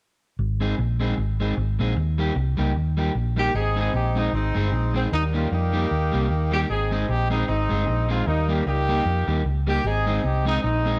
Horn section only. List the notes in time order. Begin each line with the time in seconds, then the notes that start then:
3.39 G4
3.55 C4 D#4 G#4
3.79 G#4
3.96 G4
4.18 D#4
4.34 G#3 C4 D#4
4.96 C4
5.13 G3 A#3 D#4
5.35 F4
5.52 A#3 D#4 G4
6.53 G4
6.70 C4 D#4 G#4
6.92 G#4
7.09 G4
7.31 D#4
7.48 G#3 C4 D#4
8.10 F4
8.27 G3 A#3 D#4
8.50 G4
8.67 A#3 D#4 G4
9.68 G4
9.85 C4 D#4 G#4
10.08 G#4
10.24 G4
10.47 D#4
10.63 G#3 C4 D#4